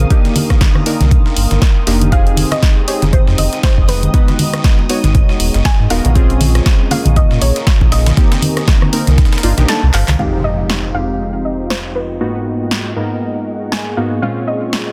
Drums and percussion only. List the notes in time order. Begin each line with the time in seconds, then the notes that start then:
0.10 kick, closed hi-hat
0.25 snare, closed hi-hat, muted conga
0.36 closed hi-hat, open hi-hat, high conga
0.50 kick, cross-stick, snare, closed hi-hat
0.61 kick, snare, closed hi-hat, muted conga
0.75 cross-stick, high conga
0.86 closed hi-hat, open hi-hat
1.00 snare, closed hi-hat, high conga
1.11 kick, closed hi-hat, muted conga, low conga
1.26 snare
1.37 closed hi-hat, open hi-hat
1.51 snare, closed hi-hat, muted conga
1.62 kick, snare, closed hi-hat
1.87 snare, closed hi-hat, open hi-hat
2.01 closed hi-hat, muted conga, high conga
2.12 kick, closed hi-hat, muted conga
2.27 closed hi-hat
2.37 closed hi-hat, open hi-hat, high conga
2.51 cross-stick, snare, closed hi-hat, muted conga
2.63 kick, snare, closed hi-hat
2.88 closed hi-hat, open hi-hat
3.02 snare, closed hi-hat, muted conga, high conga
3.13 kick, closed hi-hat, low conga
3.27 snare
3.38 closed hi-hat, open hi-hat, muted conga
3.53 snare, closed hi-hat
3.63 kick, snare, closed hi-hat
3.78 kick
3.88 snare, closed hi-hat, open hi-hat, muted conga
4.03 closed hi-hat, high conga
4.14 kick, closed hi-hat
4.28 snare, closed hi-hat, muted conga
4.39 closed hi-hat, open hi-hat, high conga
4.54 cross-stick, snare, closed hi-hat
4.64 kick, snare, closed hi-hat
4.79 muted conga
4.89 closed hi-hat, open hi-hat
5.04 snare, closed hi-hat, high conga
5.14 kick, closed hi-hat, muted conga, low conga
5.29 snare
5.40 closed hi-hat, open hi-hat
5.54 snare, closed hi-hat
5.65 kick, snare, closed hi-hat, muted conga
5.90 snare, closed hi-hat, open hi-hat
6.04 closed hi-hat, muted conga, high conga
6.16 kick, closed hi-hat
6.30 closed hi-hat
6.41 closed hi-hat, open hi-hat, high conga
6.55 cross-stick, snare, closed hi-hat, muted conga
6.66 kick, snare, closed hi-hat
6.91 closed hi-hat, open hi-hat, muted conga
7.05 closed hi-hat, high conga
7.16 kick, closed hi-hat, low conga
7.31 snare
7.41 closed hi-hat, open hi-hat, muted conga
7.56 snare, closed hi-hat
7.67 kick, snare, closed hi-hat
7.81 kick, muted conga
7.92 snare, closed hi-hat, open hi-hat
8.06 snare, closed hi-hat, high conga
8.17 kick, snare, closed hi-hat
8.32 snare, closed hi-hat, muted conga
8.42 closed hi-hat, open hi-hat, high conga
8.57 cross-stick, snare, closed hi-hat
8.68 kick, snare, closed hi-hat, muted conga
8.82 cross-stick, high conga
8.93 closed hi-hat, open hi-hat
9.07 snare, closed hi-hat, high conga
9.18 kick, snare, closed hi-hat, muted conga, low conga
9.25 snare, closed hi-hat
9.32 snare, closed hi-hat
9.38 snare, closed hi-hat
9.43 closed hi-hat, open hi-hat
9.57 snare, closed hi-hat, muted conga
9.68 snare, closed hi-hat
9.94 snare, clap, closed hi-hat, open hi-hat
10.08 clap, closed hi-hat, muted conga, high conga
10.70 snare
11.70 snare
12.71 snare
13.72 snare
14.73 snare